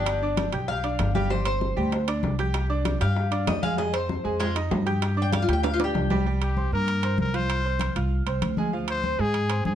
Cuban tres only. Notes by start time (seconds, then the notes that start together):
Already playing: D4
0.68 F5
1.15 F5
1.30 C5
1.46 C5
3.01 F5
3.48 D#5
3.63 F5
3.78 D#5
3.93 C5
4.40 G#3 F4
5.22 G5
5.32 F5
5.42 F4
5.53 G5
5.63 F5
5.74 F4
5.84 G4